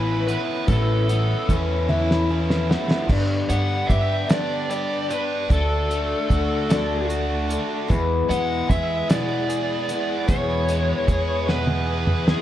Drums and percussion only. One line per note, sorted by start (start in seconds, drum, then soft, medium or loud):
0.28 closed hi-hat medium
0.68 kick loud
0.68 closed hi-hat medium
1.09 closed hi-hat medium
1.49 kick medium
1.49 closed hi-hat medium
1.89 high tom medium
2.11 snare medium
2.50 snare medium
2.71 snare medium
2.91 snare medium
3.09 kick loud
3.09 crash loud
3.50 closed hi-hat medium
3.90 kick medium
3.90 closed hi-hat medium
4.29 snare loud
4.29 closed hi-hat medium
4.70 closed hi-hat medium
5.10 closed hi-hat medium
5.50 kick loud
5.50 closed hi-hat medium
5.91 closed hi-hat medium
6.30 kick medium
6.30 closed hi-hat medium
6.70 snare loud
6.70 closed hi-hat medium
7.10 closed hi-hat medium
7.50 closed hi-hat medium
7.90 kick loud
7.90 closed hi-hat medium
8.31 closed hi-hat medium
8.70 kick medium
8.70 closed hi-hat medium
9.10 snare loud
9.10 closed hi-hat loud
9.50 closed hi-hat medium
9.89 closed hi-hat medium
10.29 kick loud
10.29 closed hi-hat loud
10.69 closed hi-hat medium
11.08 kick medium
11.08 closed hi-hat medium
11.49 snare medium
11.67 high tom medium
12.07 mid tom medium
12.28 snare medium